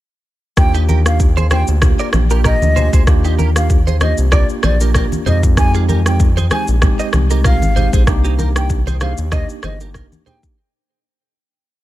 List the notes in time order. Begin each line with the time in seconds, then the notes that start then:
0.57 D#2 A#3 D4 F4 G4 G5, kick, cross-stick, shaker
0.74 D#4 G4, shaker
0.89 G4 A#4, high conga, shaker
1.05 A#3 D4 F4 G4 F5, cross-stick, shaker
1.20 kick, shaker
1.37 G#4 C5, high conga, shaker
1.51 A#3 D4 F4 G4 G#4 C5 G5, cross-stick, high conga, shaker
1.67 D2, shaker
1.82 A#3 D4 F4 G4, kick, cross-stick, low conga, shaker
1.99 A#4 D5, shaker
2.13 A#1, cross-stick, high conga, shaker
2.30 A#3 D4 F4 G4 A#4, shaker
2.44 G4 A#4 D#5, kick, cross-stick, low conga, shaker
2.62 D2, high conga, shaker
2.76 A#3 D4 F4 G4 G#4 C5, low conga, shaker
2.93 D2 G#4 C5, kick, shaker
3.07 D#2 A#3 D4 F4 G4, kick, cross-stick, shaker
3.24 D#4 G4, shaker
3.39 G4 A#4, high conga, shaker
3.55 A#3 D4 F4 G4 F5, cross-stick, shaker
3.70 kick, shaker
3.87 G#4 C5, high conga, shaker
4.01 A#3 D4 F4 G4 G#4 C5 D#5, cross-stick, high conga, shaker
4.17 C2, shaker
4.32 A#3 D4 F4 G4 A#4 D5, kick, cross-stick, low conga, shaker
4.49 shaker
4.63 A#1 G#4 C5 D5, cross-stick, high conga, shaker
4.80 A#3 D4 F4 G4 A#4, shaker
4.94 G4 A#4, kick, cross-stick, low conga, shaker
5.12 high conga, shaker
5.26 F2 G#3 C4 D#4 G4 G#4 C5 D#5, low conga, shaker
5.43 kick, shaker
5.57 G#3 C4 D#4 G4 G#5, kick, cross-stick, shaker
5.74 F4 G#4, shaker
5.89 G4 A#4, high conga, shaker
6.05 G#3 C4 D#4 G4 G5, cross-stick, shaker
6.20 kick, shaker
6.37 G#4 C5, high conga, shaker
6.51 G#3 C4 D#4 G4 G#4 C5 G#5, cross-stick, high conga, shaker
6.67 A#1, shaker
6.82 G#3 C4 D#4 G4, kick, cross-stick, low conga, shaker
6.99 C5 D#5, shaker
7.13 C2, cross-stick, high conga, shaker
7.30 G#3 C4 D#4 G4 A#4, shaker
7.44 F4 A#4 F5, kick, cross-stick, low conga, shaker
7.62 G#1, high conga, shaker
7.76 G#3 C4 D#4 G4 G#4 C5, low conga, shaker
7.93 A#1 G#4 C5, kick, shaker
8.07 C2 A#3 D4 D#4 G4, kick, cross-stick, shaker
8.24 D#4 G4, shaker
8.39 G4 A#4, high conga, shaker
8.55 A#3 D4 D#4 G4 G5, cross-stick, shaker
8.70 kick, shaker
8.87 G#4 C5, high conga, shaker
9.01 A#3 D4 D#4 G4 G#4 C5 F5, cross-stick, high conga, shaker
9.17 D#2, shaker
9.32 A#3 D4 D#4 G4 C5 D#5, kick, cross-stick, low conga, shaker
9.49 shaker
9.63 G1 G#4 C5 D#5, cross-stick, high conga, shaker
9.80 A#3 D4 D#4 G4 A#4, shaker
9.94 G4 A#4, kick, cross-stick, low conga, shaker
10.12 high conga, shaker
10.26 A#3 D4 D#4 G4 G#4 C5 G5, low conga, shaker
10.43 kick, shaker